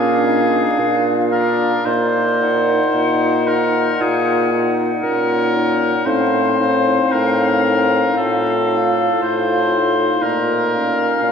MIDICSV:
0, 0, Header, 1, 6, 480
1, 0, Start_track
1, 0, Tempo, 1073345
1, 830, Time_signature, 4, 2, 24, 8
1, 1792, Tempo, 1023891
1, 2752, Tempo, 1052632
1, 4192, Tempo, 1006711
1, 5196, End_track
2, 0, Start_track
2, 0, Title_t, "Flute"
2, 0, Program_c, 0, 73
2, 0, Note_on_c, 0, 77, 64
2, 107, Note_off_c, 0, 77, 0
2, 110, Note_on_c, 0, 77, 63
2, 580, Note_off_c, 0, 77, 0
2, 589, Note_on_c, 0, 77, 58
2, 825, Note_off_c, 0, 77, 0
2, 1074, Note_on_c, 0, 78, 62
2, 1546, Note_off_c, 0, 78, 0
2, 1555, Note_on_c, 0, 78, 66
2, 2023, Note_off_c, 0, 78, 0
2, 2035, Note_on_c, 0, 78, 58
2, 2500, Note_off_c, 0, 78, 0
2, 2512, Note_on_c, 0, 78, 52
2, 2748, Note_off_c, 0, 78, 0
2, 2756, Note_on_c, 0, 77, 56
2, 2990, Note_off_c, 0, 77, 0
2, 2995, Note_on_c, 0, 77, 61
2, 3468, Note_off_c, 0, 77, 0
2, 3478, Note_on_c, 0, 77, 57
2, 3945, Note_off_c, 0, 77, 0
2, 3956, Note_on_c, 0, 77, 55
2, 4295, Note_off_c, 0, 77, 0
2, 4434, Note_on_c, 0, 77, 51
2, 4668, Note_off_c, 0, 77, 0
2, 4912, Note_on_c, 0, 77, 54
2, 5196, Note_off_c, 0, 77, 0
2, 5196, End_track
3, 0, Start_track
3, 0, Title_t, "Oboe"
3, 0, Program_c, 1, 68
3, 0, Note_on_c, 1, 68, 96
3, 514, Note_off_c, 1, 68, 0
3, 590, Note_on_c, 1, 70, 88
3, 828, Note_on_c, 1, 72, 99
3, 835, Note_off_c, 1, 70, 0
3, 1555, Note_on_c, 1, 70, 91
3, 1562, Note_off_c, 1, 72, 0
3, 1794, Note_on_c, 1, 68, 89
3, 1801, Note_off_c, 1, 70, 0
3, 2148, Note_off_c, 1, 68, 0
3, 2270, Note_on_c, 1, 70, 97
3, 2753, Note_on_c, 1, 72, 98
3, 2760, Note_off_c, 1, 70, 0
3, 3237, Note_on_c, 1, 70, 95
3, 3244, Note_off_c, 1, 72, 0
3, 3715, Note_off_c, 1, 70, 0
3, 3717, Note_on_c, 1, 69, 87
3, 4183, Note_off_c, 1, 69, 0
3, 4194, Note_on_c, 1, 72, 94
3, 4672, Note_on_c, 1, 70, 93
3, 4679, Note_off_c, 1, 72, 0
3, 5196, Note_off_c, 1, 70, 0
3, 5196, End_track
4, 0, Start_track
4, 0, Title_t, "Clarinet"
4, 0, Program_c, 2, 71
4, 0, Note_on_c, 2, 62, 59
4, 110, Note_off_c, 2, 62, 0
4, 117, Note_on_c, 2, 62, 64
4, 584, Note_off_c, 2, 62, 0
4, 596, Note_on_c, 2, 62, 62
4, 829, Note_off_c, 2, 62, 0
4, 1071, Note_on_c, 2, 63, 65
4, 1544, Note_off_c, 2, 63, 0
4, 1557, Note_on_c, 2, 63, 62
4, 2024, Note_off_c, 2, 63, 0
4, 2037, Note_on_c, 2, 63, 59
4, 2501, Note_off_c, 2, 63, 0
4, 2510, Note_on_c, 2, 63, 57
4, 2747, Note_off_c, 2, 63, 0
4, 2756, Note_on_c, 2, 63, 58
4, 2991, Note_off_c, 2, 63, 0
4, 2998, Note_on_c, 2, 63, 59
4, 3469, Note_off_c, 2, 63, 0
4, 3482, Note_on_c, 2, 63, 56
4, 3884, Note_off_c, 2, 63, 0
4, 3962, Note_on_c, 2, 63, 57
4, 4428, Note_off_c, 2, 63, 0
4, 4440, Note_on_c, 2, 63, 58
4, 4672, Note_off_c, 2, 63, 0
4, 4915, Note_on_c, 2, 61, 57
4, 5196, Note_off_c, 2, 61, 0
4, 5196, End_track
5, 0, Start_track
5, 0, Title_t, "French horn"
5, 0, Program_c, 3, 60
5, 0, Note_on_c, 3, 62, 77
5, 113, Note_on_c, 3, 63, 77
5, 120, Note_off_c, 3, 62, 0
5, 350, Note_on_c, 3, 65, 76
5, 357, Note_off_c, 3, 63, 0
5, 520, Note_off_c, 3, 65, 0
5, 592, Note_on_c, 3, 62, 72
5, 831, Note_on_c, 3, 63, 90
5, 838, Note_off_c, 3, 62, 0
5, 1792, Note_on_c, 3, 65, 74
5, 1799, Note_off_c, 3, 63, 0
5, 2032, Note_on_c, 3, 63, 71
5, 2039, Note_off_c, 3, 65, 0
5, 2187, Note_off_c, 3, 63, 0
5, 2270, Note_on_c, 3, 61, 74
5, 2752, Note_on_c, 3, 60, 79
5, 2759, Note_off_c, 3, 61, 0
5, 3716, Note_on_c, 3, 65, 84
5, 3722, Note_off_c, 3, 60, 0
5, 4667, Note_off_c, 3, 65, 0
5, 4670, Note_on_c, 3, 63, 74
5, 5149, Note_on_c, 3, 61, 67
5, 5156, Note_off_c, 3, 63, 0
5, 5196, Note_off_c, 3, 61, 0
5, 5196, End_track
6, 0, Start_track
6, 0, Title_t, "Bassoon"
6, 0, Program_c, 4, 70
6, 0, Note_on_c, 4, 46, 81
6, 294, Note_off_c, 4, 46, 0
6, 351, Note_on_c, 4, 46, 80
6, 775, Note_off_c, 4, 46, 0
6, 833, Note_on_c, 4, 46, 81
6, 1257, Note_off_c, 4, 46, 0
6, 1315, Note_on_c, 4, 46, 69
6, 1736, Note_off_c, 4, 46, 0
6, 1791, Note_on_c, 4, 46, 77
6, 2214, Note_off_c, 4, 46, 0
6, 2270, Note_on_c, 4, 46, 75
6, 2693, Note_off_c, 4, 46, 0
6, 2754, Note_on_c, 4, 45, 74
6, 3181, Note_off_c, 4, 45, 0
6, 3237, Note_on_c, 4, 45, 72
6, 3658, Note_off_c, 4, 45, 0
6, 3715, Note_on_c, 4, 45, 69
6, 4135, Note_off_c, 4, 45, 0
6, 4192, Note_on_c, 4, 45, 74
6, 4617, Note_off_c, 4, 45, 0
6, 4671, Note_on_c, 4, 46, 72
6, 5094, Note_off_c, 4, 46, 0
6, 5149, Note_on_c, 4, 46, 67
6, 5196, Note_off_c, 4, 46, 0
6, 5196, End_track
0, 0, End_of_file